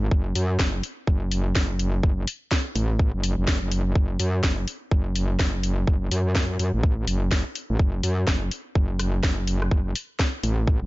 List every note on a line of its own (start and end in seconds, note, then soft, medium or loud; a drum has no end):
0.11 0.34 F#1 loud
0.11 kick loud
0.35 0.58 F#2 loud
0.35 open hi-hat loud
0.59 0.82 F#1 medium
0.59 kick loud
0.59 snare loud
0.83 open hi-hat loud
1.07 1.54 F#1 medium
1.07 kick loud
1.31 open hi-hat loud
1.55 2.02 F#1 loud
1.55 kick loud
1.55 snare loud
1.79 open hi-hat loud
2.03 2.26 F#1 loud
2.03 kick loud
2.27 open hi-hat loud
2.51 kick loud
2.51 snare loud
2.75 3.12 A1 loud
2.75 open hi-hat loud
2.99 kick loud
3.14 3.36 F#1 medium
3.24 open hi-hat loud
3.38 3.60 F#1 medium
3.47 kick loud
3.47 snare loud
3.62 3.94 F#1 medium
3.72 open hi-hat loud
3.95 4.18 F#1 loud
3.95 kick loud
4.19 4.42 F#2 loud
4.19 open hi-hat loud
4.43 4.66 F#1 loud
4.43 kick loud
4.43 snare loud
4.68 open hi-hat loud
4.91 5.38 F#1 loud
4.91 kick loud
5.16 open hi-hat loud
5.39 5.86 F#1 loud
5.39 kick loud
5.39 snare loud
5.63 open hi-hat loud
5.87 6.10 F#1 medium
5.87 kick loud
6.11 6.58 F#2 loud
6.11 open hi-hat loud
6.35 kick loud
6.35 snare loud
6.59 6.72 F#2 loud
6.59 open hi-hat loud
6.74 7.06 A1 loud
6.83 kick loud
7.07 7.44 F#1 loud
7.07 open hi-hat loud
7.31 kick loud
7.31 snare loud
7.55 open hi-hat loud
7.70 7.78 A1 loud
7.79 8.02 F#1 medium
7.79 kick loud
8.03 8.26 F#2 loud
8.03 open hi-hat loud
8.27 8.50 F#1 loud
8.27 kick loud
8.27 snare loud
8.51 open hi-hat loud
8.75 9.22 F#1 loud
8.75 kick loud
8.99 cross-stick medium
8.99 open hi-hat loud
9.23 9.70 F#1 loud
9.23 kick loud
9.23 snare loud
9.47 open hi-hat loud
9.62 cross-stick medium
9.71 9.94 F#1 medium
9.71 kick loud
9.95 open hi-hat loud
10.19 kick loud
10.19 snare loud
10.43 10.80 A1 loud
10.43 open hi-hat loud
10.67 kick loud
10.82 10.86 F#1 medium